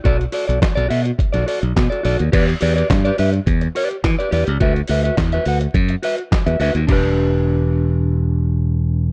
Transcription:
<<
  \new Staff \with { instrumentName = "Clean electric guitar" } { \time 4/4 \key e \minor \tempo 4 = 105 <fis' a' d''>16 r16 <fis' a' d''>16 <fis' a' d''>16 r16 <fis' a' d''>16 <fis' a' e''>16 r8 <fis' a' d''>16 <fis' a' d''>16 r8 <fis' a' d''>16 <fis' a' d''>16 r16 | <g' b' d''>16 r16 <g' b' d''>16 <g' b' d''>16 r16 <g' b' d''>16 <g' b' e''>16 r8. <g' b' d''>16 r8 <g' b' d''>16 <g' b' d''>16 r16 | <fis' b' e''>16 r16 <fis' b' e''>16 <fis' b' e''>16 r16 <fis' b' e''>16 <fis' b' fis''>16 r8. <fis' b' e''>16 r8 <fis' b' e''>16 <fis' b' e''>16 r16 | <d' g' b'>1 | }
  \new Staff \with { instrumentName = "Fingered electric bass" } { \clef bass \time 4/4 \key e \minor b,,8 r16 b,,16 r16 b,,16 b,8 r16 b,,16 r16 b,,16 b,16 r16 b,,16 dis,16 | e,8 e,8 g,8 g,8 e,8 r8 e16 r16 e,16 cis,16 | d,8 d,8 e,8 d,8 fis,8 r8. e,16 d,16 dis,16 | e,,1 | }
  \new DrumStaff \with { instrumentName = "Drums" } \drummode { \time 4/4 <hh bd>16 hh16 hho16 hh16 <hc hh bd sn>16 hh16 hho16 hh16 <hh bd>16 <hh sn>16 hho16 hh16 <hc hh bd sn>16 hh16 hho16 hh16 | <cymc hh bd>16 hh16 hho16 hh16 <hc hh bd sn>16 hh16 hho16 hh16 <hh bd>16 hh16 hho16 hh16 <hc hh bd sn>16 hh16 hho16 hh16 | <hh bd>16 hh16 hho16 hh16 <hc hh bd sn>16 hh16 hho16 hh16 <hh bd>16 hh16 hho16 hh16 <hc hh bd sn>16 hh16 hho16 hh16 | <cymc bd>4 r4 r4 r4 | }
>>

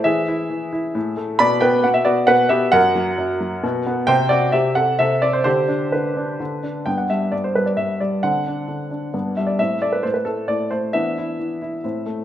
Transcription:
<<
  \new Staff \with { instrumentName = "Grand piano" } { \time 3/4 \key g \major \tempo 4 = 133 << { <gis' e''>2~ <gis' e''>8 r8 | <d'' b''>8 <b' g''>8 fis''16 e''16 <fis' d''>8 <b' fis''>8 <g' e''>8 | <ais' fis''>2~ <ais' fis''>8 r8 | <c'' g''>8 <fis' d''>8 <g' e''>8 <a' fis''>8 <a' e''>8 d''16 c''16 |
<g' c''>4 <d' b'>4. r8 | g''16 fis''16 e''8 d''16 c''16 b'16 d''16 e''8 d''8 | fis''2~ fis''8 e''16 d''16 | e''8 d''16 b'16 c''16 b'16 a'8 d''8 c''8 |
e''2~ e''8 r8 | } \\ { r2. | r2. | r2. | r2. |
r2. | <b d'>2. | <c' d'>2 <b d'>4 | c'2. |
<b d'>2 c'4 | } >> }
  \new Staff \with { instrumentName = "Grand piano" } { \clef bass \time 3/4 \key g \major e8 e'8 e8 e'8 a,8 a8 | b,8 b8 b,8 b8 b,8 b8 | fis,8 fis8 fis,8 fis8 b,8 b8 | c8 c'8 c8 c'8 c8 c'8 |
d8 d'8 d8 d'8 d8 d'8 | g,8 g8 g,8 g8 g,8 g8 | d8 d'8 d8 d'8 g,8 g8 | a,8 a8 a,8 a8 a,8 a8 |
e8 e'8 e8 e'8 a,8 a8 | }
>>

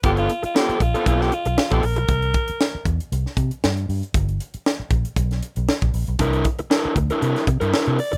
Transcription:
<<
  \new Staff \with { instrumentName = "Alto saxophone" } { \time 4/4 \key c \major \tempo 4 = 117 g'16 f'8 f'16 g'8 f'8 f'16 g'16 f'8. g'16 bes'8~ | bes'4. r2 r8 | r1 | r2. r8 d''8 | }
  \new Staff \with { instrumentName = "Overdriven electric guitar" } { \time 4/4 \key c \major <b f' a'>8 r8 <b f' a'>8 r16 <b f' a'>16 <b f' a'>8 r8. <b f' a'>8 r16 | r1 | r1 | <d' e' bes'>8 r8 <d' e' bes'>8 r16 <d' e' bes'>16 <d' e' bes'>8 r16 <d' e' bes'>16 <d' e' bes'>8 r8 | }
  \new Staff \with { instrumentName = "Fingered electric bass" } { \clef bass \time 4/4 \key c \major g,,8 r4 bes,,16 r16 b,,8 r16 b,,16 r16 bes,,16 bes,,16 b,,16 | c,8 r4 e,16 r16 c,16 r16 c16 r16 g,8 g,16 r16 | g,,8 r4 bes,,16 r16 b,,8 r16 b,,16 r16 bes,,16 bes,,16 b,,16 | c,8 r4 d,16 r16 c16 r16 c16 g,16 r16 c16 r16 fis,,16 | }
  \new DrumStaff \with { instrumentName = "Drums" } \drummode { \time 4/4 <hh bd>16 hh16 hh16 hh16 sn16 hh16 <hh bd>16 hh16 <hh bd>16 sn16 hh16 hh16 sn16 <hh bd>16 hho16 hh16 | <hh bd>16 hh16 <hh bd>16 hh16 sn8 <hh bd>16 hh16 hh16 sn16 <hh bd>16 hh16 sn16 hh16 hho16 hh16 | <hh bd>16 hh16 hh16 hh16 sn8 <hh bd>16 hh16 <hh bd>16 <hh sn>16 hh16 hh16 sn16 <hh bd>16 hho16 hh16 | <hh bd>16 hh16 <hh bd>16 hh16 sn8 <hh bd>16 hh16 hh16 <hh sn>16 <hh bd>16 hh16 sn16 hh16 hho16 hh16 | }
>>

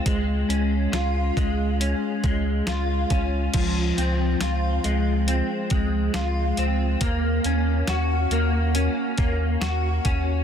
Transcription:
<<
  \new Staff \with { instrumentName = "Clean electric guitar" } { \time 4/4 \key des \major \tempo 4 = 69 aes8 des'8 f'8 aes8 des'8 aes8 f'8 des'8 | f8 c'8 f'8 aes8 c'8 aes8 f'8 c'8 | bes8 des'8 ges'8 bes8 des'8 bes8 ges'8 des'8 | }
  \new Staff \with { instrumentName = "Sub bass" } { \clef bass \time 4/4 \key des \major des,8 des,8 des,8 des,8. r16 des,8 des,8 des,8 | des,8 des,8 des,8 des,8. r16 des,8 des,8 des,8 | ees,8 ees,8 ees,8 ees,8. r16 ees,8 ees,8 ees,8 | }
  \new DrumStaff \with { instrumentName = "Drums" } \drummode { \time 4/4 <hh bd>8 hh8 <hh sn>8 <hh bd>8 hh8 <hh bd>8 <hh sn>8 <hh bd>8 | <cymc hh bd>8 hh8 <hh sn>8 hh8 hh8 <hh bd>8 <hh sn>8 hh8 | <hh bd>8 hh8 <hh sn>8 hh8 hh8 <hh bd>8 <hh sn>8 <hh bd>8 | }
>>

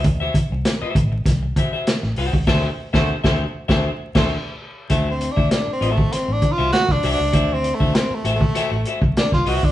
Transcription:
<<
  \new Staff \with { instrumentName = "Clean electric guitar" } { \time 4/4 \key d \mixolydian \tempo 4 = 99 r16 <fis' c'' e''>16 r8. <fis' c'' e''>16 r4 <fis' c'' e''>16 <fis' c'' e''>16 r8 <fis' c'' fis''>16 r16 | <fis' c'' e''>8 r16 <fis' c'' e''>8 <fis' c'' e''>8 r16 <fis' c'' e''>8 r16 <fis' c'' e''>8 r8. | <fis' c'' e''>16 r8 <fis' c'' e''>16 r8 <fis' c'' e''>16 r4 <fis' c'' e''>16 r8 <fis' c'' e''>16 r16 | <fis' c'' e''>16 r8 <fis' c'' e''>16 r8 <fis' c'' e''>16 r16 <fis' c'' e''>16 r16 <fis' c'' e''>16 r8. <fis' c'' e''>16 r16 | }
  \new Staff \with { instrumentName = "Horn section" } { \time 4/4 \key d \mixolydian r1 | <c' fis' a' c''>8 r16 <c' fis' a' c''>8 <c' fis' a' c''>8 r16 <c' fis' a' c''>8 r16 <c' fis' a' c''>8 r8. | r1 | r1 | }
  \new Staff \with { instrumentName = "Tenor saxophone" } { \time 4/4 \key d \mixolydian r1 | r1 | \tuplet 3/2 { a8 c'8 d'8 d'8 c'8 a8 c'8 d'8 f'8 fis'8 d'8 d'8~ } | \tuplet 3/2 { d'8 c'8 a8 c'8 a8 a8~ } a8. r16 d'16 f'16 fis'16 d'16 | }
  \new Staff \with { instrumentName = "Fingered electric bass" } { \clef bass \time 4/4 \key d \mixolydian d,8 r16 c,16 r8 a,,8 c,8 r8. a,,16 c,16 cis,16 | d,8 r16 d,8 d,8 r16 d,8 r16 d,8 r8. | d,8. d,16 r8 a,,8 r16 a,,16 r16 c,16 r16 c,16 c,16 cis,16 | d,8. d,16 r8 a,,8 r16 a,,16 r16 c,16 r16 c,16 c,16 cis,16 | }
  \new DrumStaff \with { instrumentName = "Drums" } \drummode { \time 4/4 <hh bd>8 <hh bd>8 <hh sn>8 <hh bd>8 <hh bd sn>8 <hh bd>8 <hh sn>16 sn16 hho16 bd16 | <cymc bd sn>8. <bd sn>16 r16 <bd sn>8. <bd sn>8. <cymc bd sn>16 r4 | <hh bd>8 hh16 bd16 <hh sn>8 hh16 bd16 <hh sn>8 <hh bd>8 <hh sn>16 <bd sn>16 hho8 | <hh bd>8 hh16 bd16 <hh sn>8 hh16 bd16 <hh sn>8 hh16 bd16 <hh sn>16 <bd sn>16 hho16 bd16 | }
>>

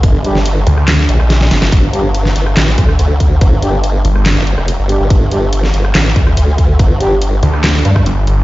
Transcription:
<<
  \new Staff \with { instrumentName = "Brass ensemble" } { \time 4/4 \key g \minor \tempo 4 = 142 r8 <g d' g'>8 r2. | r8 <g d' g'>8 r2. | r8 <g d' g'>8 r2 r8 <g d' g'>8 | r8 <g d' g'>8 r2. |
r8 <g d' g'>8 r2. | }
  \new Staff \with { instrumentName = "Detuned saw bass" } { \clef bass \time 4/4 \key g \minor r4. d,4 r4. | r1 | r4. g,,8 r2 | r1 |
r4. d,4 r8 g,,8 g,,8 | }
  \new Staff \with { instrumentName = "Wobble bass" } { \clef bass \time 4/4 \key g \minor g,,4. r4 bes,,4 g,,8 | g,,4. g,,8 a,,8 d,8 d,4 | g,,4. r8. g,,8 f,,8 g,,8 g,,16 | g,,4. g,,8 a,,8 d,8 d,4 |
g,,4. r4 g,8 r4 | }
  \new DrumStaff \with { instrumentName = "Drums" } \drummode { \time 4/4 <hh bd>8 hh16 sn16 hh8 hh16 ss16 <hc hh sn>8 hh16 ss16 <hh sn>16 sn16 <hh sn>16 sn16 | <hh bd>8 hh8 hh16 sn16 hh16 ss16 <hc hh sn>8 <hh bd>16 ss16 hh8 <hh bd>8 | <hh bd>8 hh8 hh8 hh16 ss16 <hc hh sn>8 hh16 ss16 hh8 hh8 | <hh bd>8 hh8 hh16 sn16 hh16 ss16 <hc hh sn>8 <hh bd>16 ss16 hh8 <hh bd>8 |
<hh bd>8 hh8 hh8 hh16 ss16 <hc hh sn>8 hh16 <bd ss>16 hh8 hh8 | }
>>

